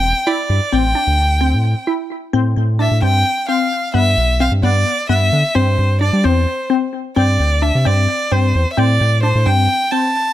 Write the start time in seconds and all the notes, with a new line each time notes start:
Already playing: E1 C4 G5
0.27 E4 D5
0.50 G2
0.72 A1 C4 G5
0.95 D4
1.07 D2
1.41 C4
1.54 A2
1.87 E4
2.33 A2 C4
2.57 A2
2.79 D4 E5
2.91 A2
3.02 G2 C4 G5
3.49 C4 F5
3.94 G2 B3 E5
4.17 B1
4.40 C4 F5
4.52 G2
4.63 G2 B3 D5
5.09 G2 B3 E5
5.33 D3
5.55 G2 C4 C5
5.79 G2
6.01 D4 D5
6.13 G3
6.24 E2 C4 C5
6.70 C4
7.16 G2 C4 D5
7.40 D2
7.62 D4 E5
7.75 C3
7.85 G2 C4 D5
8.32 G2 C4 C5
8.55 E2
8.72 E5
8.77 A2 C4 D5
9.01 A2
9.23 D4 C5
9.35 A2
9.46 G2 C4 G5
9.92 C4 A5